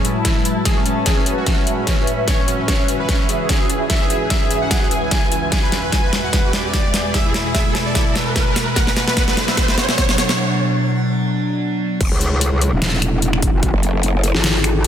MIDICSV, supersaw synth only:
0, 0, Header, 1, 2, 480
1, 0, Start_track
1, 0, Key_signature, 3, "minor"
1, 0, Tempo, 405405
1, 776, Time_signature, 4, 2, 24, 8
1, 17607, End_track
2, 0, Start_track
2, 0, Title_t, "Supersaw synth"
2, 0, Program_c, 0, 81
2, 57, Note_on_c, 0, 64, 91
2, 688, Note_off_c, 0, 64, 0
2, 775, Note_on_c, 0, 68, 98
2, 875, Note_off_c, 0, 68, 0
2, 906, Note_on_c, 0, 61, 61
2, 990, Note_off_c, 0, 61, 0
2, 1014, Note_on_c, 0, 61, 61
2, 1115, Note_off_c, 0, 61, 0
2, 1146, Note_on_c, 0, 61, 57
2, 1230, Note_off_c, 0, 61, 0
2, 1255, Note_on_c, 0, 68, 93
2, 1355, Note_off_c, 0, 68, 0
2, 1387, Note_on_c, 0, 61, 61
2, 1471, Note_off_c, 0, 61, 0
2, 1497, Note_on_c, 0, 61, 68
2, 1596, Note_off_c, 0, 61, 0
2, 1627, Note_on_c, 0, 66, 90
2, 1710, Note_off_c, 0, 66, 0
2, 1736, Note_on_c, 0, 61, 62
2, 1836, Note_off_c, 0, 61, 0
2, 1867, Note_on_c, 0, 61, 65
2, 1950, Note_off_c, 0, 61, 0
2, 1975, Note_on_c, 0, 61, 93
2, 2607, Note_off_c, 0, 61, 0
2, 2696, Note_on_c, 0, 73, 99
2, 2795, Note_off_c, 0, 73, 0
2, 2825, Note_on_c, 0, 61, 64
2, 2910, Note_off_c, 0, 61, 0
2, 2934, Note_on_c, 0, 61, 64
2, 3035, Note_off_c, 0, 61, 0
2, 3065, Note_on_c, 0, 61, 60
2, 3150, Note_off_c, 0, 61, 0
2, 3176, Note_on_c, 0, 73, 97
2, 3276, Note_off_c, 0, 73, 0
2, 3306, Note_on_c, 0, 61, 65
2, 3390, Note_off_c, 0, 61, 0
2, 3416, Note_on_c, 0, 61, 66
2, 3516, Note_off_c, 0, 61, 0
2, 3545, Note_on_c, 0, 71, 92
2, 3630, Note_off_c, 0, 71, 0
2, 3655, Note_on_c, 0, 61, 63
2, 3755, Note_off_c, 0, 61, 0
2, 3783, Note_on_c, 0, 61, 63
2, 3869, Note_off_c, 0, 61, 0
2, 3896, Note_on_c, 0, 68, 90
2, 4528, Note_off_c, 0, 68, 0
2, 4615, Note_on_c, 0, 76, 97
2, 4715, Note_off_c, 0, 76, 0
2, 4747, Note_on_c, 0, 68, 64
2, 4831, Note_off_c, 0, 68, 0
2, 4857, Note_on_c, 0, 68, 66
2, 4956, Note_off_c, 0, 68, 0
2, 4987, Note_on_c, 0, 68, 60
2, 5071, Note_off_c, 0, 68, 0
2, 5097, Note_on_c, 0, 76, 94
2, 5196, Note_off_c, 0, 76, 0
2, 5226, Note_on_c, 0, 68, 63
2, 5310, Note_off_c, 0, 68, 0
2, 5333, Note_on_c, 0, 68, 66
2, 5434, Note_off_c, 0, 68, 0
2, 5465, Note_on_c, 0, 78, 91
2, 5549, Note_off_c, 0, 78, 0
2, 5574, Note_on_c, 0, 68, 59
2, 5675, Note_off_c, 0, 68, 0
2, 5705, Note_on_c, 0, 68, 64
2, 5789, Note_off_c, 0, 68, 0
2, 5814, Note_on_c, 0, 80, 92
2, 6447, Note_off_c, 0, 80, 0
2, 6536, Note_on_c, 0, 80, 95
2, 6636, Note_off_c, 0, 80, 0
2, 6666, Note_on_c, 0, 71, 65
2, 6750, Note_off_c, 0, 71, 0
2, 6777, Note_on_c, 0, 71, 67
2, 6876, Note_off_c, 0, 71, 0
2, 6906, Note_on_c, 0, 71, 62
2, 6990, Note_off_c, 0, 71, 0
2, 7015, Note_on_c, 0, 80, 96
2, 7115, Note_off_c, 0, 80, 0
2, 7145, Note_on_c, 0, 71, 65
2, 7230, Note_off_c, 0, 71, 0
2, 7254, Note_on_c, 0, 71, 66
2, 7355, Note_off_c, 0, 71, 0
2, 7386, Note_on_c, 0, 78, 88
2, 7470, Note_off_c, 0, 78, 0
2, 7497, Note_on_c, 0, 71, 66
2, 7596, Note_off_c, 0, 71, 0
2, 7626, Note_on_c, 0, 71, 64
2, 7710, Note_off_c, 0, 71, 0
2, 7736, Note_on_c, 0, 74, 94
2, 8368, Note_off_c, 0, 74, 0
2, 8455, Note_on_c, 0, 76, 100
2, 8555, Note_off_c, 0, 76, 0
2, 8587, Note_on_c, 0, 64, 65
2, 8670, Note_off_c, 0, 64, 0
2, 8698, Note_on_c, 0, 64, 66
2, 8797, Note_off_c, 0, 64, 0
2, 8827, Note_on_c, 0, 64, 63
2, 8910, Note_off_c, 0, 64, 0
2, 8936, Note_on_c, 0, 76, 95
2, 9036, Note_off_c, 0, 76, 0
2, 9067, Note_on_c, 0, 64, 64
2, 9150, Note_off_c, 0, 64, 0
2, 9177, Note_on_c, 0, 64, 71
2, 9276, Note_off_c, 0, 64, 0
2, 9306, Note_on_c, 0, 74, 92
2, 9390, Note_off_c, 0, 74, 0
2, 9414, Note_on_c, 0, 64, 60
2, 9514, Note_off_c, 0, 64, 0
2, 9544, Note_on_c, 0, 64, 65
2, 9629, Note_off_c, 0, 64, 0
2, 9655, Note_on_c, 0, 71, 95
2, 10287, Note_off_c, 0, 71, 0
2, 10374, Note_on_c, 0, 78, 104
2, 10475, Note_off_c, 0, 78, 0
2, 10506, Note_on_c, 0, 71, 64
2, 10590, Note_off_c, 0, 71, 0
2, 10616, Note_on_c, 0, 71, 65
2, 10715, Note_off_c, 0, 71, 0
2, 10745, Note_on_c, 0, 71, 65
2, 10830, Note_off_c, 0, 71, 0
2, 10855, Note_on_c, 0, 78, 99
2, 10955, Note_off_c, 0, 78, 0
2, 10983, Note_on_c, 0, 71, 66
2, 11069, Note_off_c, 0, 71, 0
2, 11094, Note_on_c, 0, 71, 70
2, 11195, Note_off_c, 0, 71, 0
2, 11226, Note_on_c, 0, 76, 95
2, 11310, Note_off_c, 0, 76, 0
2, 11336, Note_on_c, 0, 71, 61
2, 11435, Note_off_c, 0, 71, 0
2, 11467, Note_on_c, 0, 71, 67
2, 11551, Note_off_c, 0, 71, 0
2, 11576, Note_on_c, 0, 73, 90
2, 12208, Note_off_c, 0, 73, 0
2, 17607, End_track
0, 0, End_of_file